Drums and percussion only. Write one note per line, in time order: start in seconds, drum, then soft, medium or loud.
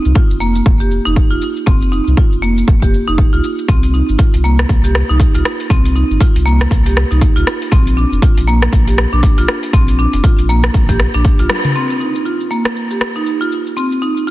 0.05 shaker medium
0.16 kick loud
0.16 shaker medium
0.30 shaker soft
0.41 shaker medium
0.55 shaker medium
0.66 kick loud
0.66 shaker medium
0.81 shaker medium
0.91 shaker soft
1.06 shaker soft
1.16 kick loud
1.16 shaker medium
1.31 shaker medium
1.42 shaker medium
1.56 shaker medium
1.67 kick loud
1.67 shaker medium
1.82 shaker soft
1.93 shaker soft
2.07 shaker soft
2.17 kick loud
2.17 shaker medium
2.33 shaker soft
2.43 shaker medium
2.58 shaker medium
2.68 kick loud
2.68 shaker medium
2.82 kick medium
2.82 shaker medium
2.94 shaker soft
3.08 shaker medium
3.18 kick loud
3.18 shaker medium
3.33 shaker medium
3.44 shaker medium
3.58 shaker medium
3.69 kick loud
3.69 closed hi-hat medium
3.69 shaker medium
3.83 closed hi-hat soft
3.83 shaker soft
3.94 shaker soft
4.09 shaker soft
4.19 kick loud
4.19 closed hi-hat medium
4.19 shaker soft
4.34 closed hi-hat soft
4.34 shaker soft
4.45 shaker medium
4.59 cross-stick medium
4.59 shaker medium
4.69 kick loud
4.69 closed hi-hat medium
4.69 shaker soft
4.85 closed hi-hat soft
4.85 shaker medium
4.95 cross-stick medium
4.95 shaker soft
5.10 shaker soft
5.20 kick loud
5.20 closed hi-hat medium
5.20 shaker medium
5.35 closed hi-hat soft
5.35 shaker soft
5.45 cross-stick medium
5.45 shaker medium
5.60 closed hi-hat soft
5.60 shaker soft
5.70 kick loud
5.70 closed hi-hat medium
5.70 shaker medium
5.85 closed hi-hat soft
5.85 shaker soft
5.96 shaker soft
6.11 shaker soft
6.21 kick loud
6.21 closed hi-hat medium
6.21 shaker soft
6.36 closed hi-hat soft
6.36 shaker soft
6.47 shaker medium
6.61 cross-stick medium
6.61 closed hi-hat soft
6.61 shaker medium
6.71 kick loud
6.71 closed hi-hat medium
6.71 shaker soft
6.86 closed hi-hat soft
6.86 shaker medium
6.97 cross-stick medium
6.97 shaker soft
7.12 closed hi-hat soft
7.12 shaker soft
7.21 kick loud
7.21 closed hi-hat medium
7.21 shaker medium
7.37 closed hi-hat soft
7.37 shaker soft
7.47 cross-stick medium
7.47 shaker medium
7.62 closed hi-hat soft
7.62 shaker soft
7.72 kick loud
7.72 closed hi-hat medium
7.72 shaker medium
7.87 closed hi-hat soft
7.87 shaker soft
7.98 shaker soft
8.13 shaker soft
8.22 kick loud
8.22 closed hi-hat medium
8.22 shaker soft
8.38 closed hi-hat soft
8.38 shaker soft
8.48 shaker medium
8.62 cross-stick medium
8.62 shaker medium
8.73 kick loud
8.73 closed hi-hat medium
8.73 shaker soft
8.88 closed hi-hat soft
8.88 shaker medium
8.98 cross-stick medium
8.98 shaker soft
9.13 shaker soft
9.23 kick loud
9.23 closed hi-hat medium
9.23 shaker medium
9.38 closed hi-hat soft
9.38 shaker soft
9.48 cross-stick medium
9.48 shaker medium
9.63 closed hi-hat soft
9.63 shaker soft
9.73 kick loud
9.73 closed hi-hat medium
9.73 shaker medium
9.88 closed hi-hat soft
9.88 shaker soft
9.99 shaker medium
10.13 closed hi-hat soft
10.13 shaker medium
10.24 kick loud
10.24 closed hi-hat medium
10.24 shaker soft
10.39 closed hi-hat soft
10.39 shaker soft
10.49 shaker medium
10.64 cross-stick medium
10.64 closed hi-hat soft
10.64 shaker medium
10.74 kick loud
10.74 closed hi-hat medium
10.74 shaker soft
10.89 kick medium
10.89 closed hi-hat soft
10.89 shaker medium
11.00 cross-stick medium
11.00 shaker soft
11.14 closed hi-hat soft
11.14 shaker soft
11.25 kick loud
11.25 closed hi-hat medium
11.25 shaker medium
11.39 closed hi-hat soft
11.39 shaker soft
11.50 cross-stick medium
11.50 high tom medium
11.50 shaker medium
11.64 closed hi-hat soft
11.64 mid tom medium
11.64 shaker soft
11.75 shaker medium
11.90 shaker soft
12.01 shaker soft
12.15 shaker soft
12.26 shaker soft
12.41 shaker soft
12.51 shaker medium
12.65 cross-stick medium
12.65 shaker medium
12.76 shaker soft
12.91 shaker medium
13.01 cross-stick medium
13.01 shaker soft
13.16 shaker soft
13.26 shaker medium
13.41 shaker soft
13.52 shaker medium
13.67 shaker soft
13.77 shaker medium
13.92 shaker soft
14.02 shaker soft
14.17 shaker soft